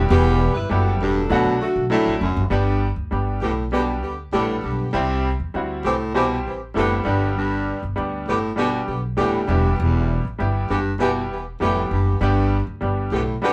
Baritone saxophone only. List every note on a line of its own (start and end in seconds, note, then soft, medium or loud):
0.10 0.52 E2 medium
1.01 1.25 G2 medium
1.31 1.55 B2 medium
1.91 2.15 A2 medium
2.21 2.45 F#2 medium
2.51 2.94 G2 medium
3.42 3.67 A2 medium
3.72 3.97 B2 medium
4.33 4.57 A2 medium
4.63 4.88 G2 medium
4.93 5.36 C3 medium
5.85 6.09 A2 medium
6.14 6.39 B2 medium
6.76 7.00 A2 medium
7.06 7.30 G2 medium
7.37 7.80 G2 medium
8.28 8.52 A2 medium
8.58 8.82 B2 medium
9.18 9.43 A2 medium
9.49 9.73 G2 medium
9.79 10.22 E2 medium
10.70 10.94 G2 medium
11.00 11.24 B2 medium
11.61 11.85 A2 medium
11.91 12.15 G2 medium
12.21 12.64 G2 medium
13.12 13.36 A2 medium
13.43 13.53 B2 medium